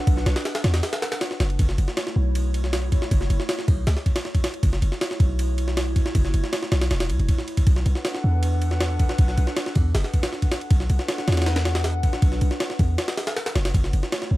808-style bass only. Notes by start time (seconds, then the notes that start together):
0.07 B1
0.26 B1
0.64 E2
1.40 F#1
1.59 F#1
1.78 F#1
2.16 B1
3.11 F#1
3.30 F#1
3.68 B1
3.87 C#2
4.63 F#1
4.82 F#1
5.20 B1
6.15 F#1
6.34 F#1
6.72 B1
6.91 E1
7.10 C#2
7.20 E1
7.67 B1
7.86 B1
8.24 E2
9.19 B1
9.38 B1
9.76 E2
9.95 F#1
10.71 B1
10.90 B1
11.28 E2
12.22 B1
12.42 B1
12.79 E2
13.55 F#1
13.74 F#1
13.93 F#1
14.31 B1